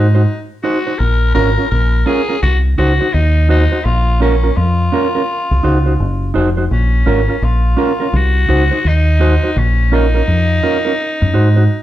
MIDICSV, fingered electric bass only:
0, 0, Header, 1, 2, 480
1, 0, Start_track
1, 0, Key_signature, -5, "minor"
1, 0, Tempo, 713776
1, 670, Time_signature, 4, 2, 24, 8
1, 7953, End_track
2, 0, Start_track
2, 0, Title_t, "Fingered electric bass"
2, 0, Program_c, 0, 33
2, 0, Note_on_c, 0, 44, 84
2, 167, Note_off_c, 0, 44, 0
2, 673, Note_on_c, 0, 34, 105
2, 886, Note_off_c, 0, 34, 0
2, 915, Note_on_c, 0, 32, 92
2, 1050, Note_off_c, 0, 32, 0
2, 1154, Note_on_c, 0, 34, 107
2, 1367, Note_off_c, 0, 34, 0
2, 1631, Note_on_c, 0, 36, 110
2, 1845, Note_off_c, 0, 36, 0
2, 1873, Note_on_c, 0, 37, 87
2, 2009, Note_off_c, 0, 37, 0
2, 2113, Note_on_c, 0, 39, 102
2, 2464, Note_off_c, 0, 39, 0
2, 2591, Note_on_c, 0, 34, 115
2, 3020, Note_off_c, 0, 34, 0
2, 3073, Note_on_c, 0, 41, 106
2, 3286, Note_off_c, 0, 41, 0
2, 3706, Note_on_c, 0, 36, 87
2, 3782, Note_off_c, 0, 36, 0
2, 3794, Note_on_c, 0, 37, 92
2, 4007, Note_off_c, 0, 37, 0
2, 4033, Note_on_c, 0, 30, 107
2, 4246, Note_off_c, 0, 30, 0
2, 4274, Note_on_c, 0, 29, 96
2, 4486, Note_off_c, 0, 29, 0
2, 4512, Note_on_c, 0, 34, 114
2, 4726, Note_off_c, 0, 34, 0
2, 4752, Note_on_c, 0, 32, 105
2, 4888, Note_off_c, 0, 32, 0
2, 4990, Note_on_c, 0, 34, 103
2, 5204, Note_off_c, 0, 34, 0
2, 5469, Note_on_c, 0, 36, 124
2, 5684, Note_off_c, 0, 36, 0
2, 5709, Note_on_c, 0, 37, 95
2, 5846, Note_off_c, 0, 37, 0
2, 5950, Note_on_c, 0, 39, 99
2, 6302, Note_off_c, 0, 39, 0
2, 6432, Note_on_c, 0, 34, 114
2, 6860, Note_off_c, 0, 34, 0
2, 6911, Note_on_c, 0, 41, 96
2, 7125, Note_off_c, 0, 41, 0
2, 7544, Note_on_c, 0, 42, 107
2, 7620, Note_off_c, 0, 42, 0
2, 7630, Note_on_c, 0, 44, 91
2, 7844, Note_off_c, 0, 44, 0
2, 7953, End_track
0, 0, End_of_file